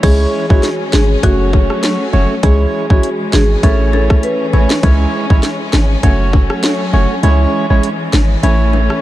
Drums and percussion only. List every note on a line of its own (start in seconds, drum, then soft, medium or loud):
0.03 kick loud
0.03 closed hi-hat medium
0.03 crash loud
0.03 high bongo medium
0.50 kick loud
0.63 snare medium
0.63 closed hi-hat medium
0.93 snare loud
0.93 low bongo medium
1.23 kick medium
1.23 closed hi-hat medium
1.23 high bongo medium
1.53 kick medium
1.53 high bongo medium
1.70 cross-stick medium
1.83 snare loud
1.83 closed hi-hat medium
2.13 low bongo medium
2.43 kick loud
2.43 closed hi-hat medium
2.43 high bongo medium
2.90 kick loud
3.03 closed hi-hat medium
3.33 snare loud
3.33 low bongo medium
3.63 kick medium
3.63 closed hi-hat medium
3.63 high bongo medium
3.93 high bongo medium
4.10 kick loud
4.10 cross-stick loud
4.23 closed hi-hat medium
4.53 low bongo medium
4.70 snare loud
4.83 kick loud
4.83 closed hi-hat medium
4.83 high bongo medium
5.30 kick loud
5.43 snare medium
5.43 closed hi-hat medium
5.73 snare loud
5.73 low bongo medium
6.03 kick medium
6.03 closed hi-hat medium
6.03 high bongo medium
6.33 kick medium
6.33 high bongo medium
6.50 cross-stick loud
6.63 snare loud
6.63 closed hi-hat medium
6.93 low bongo medium
7.23 closed hi-hat medium
7.23 high bongo medium
7.83 closed hi-hat medium
8.13 snare loud
8.13 low bongo medium
8.43 closed hi-hat medium
8.43 high bongo medium
8.73 high bongo medium
8.90 cross-stick loud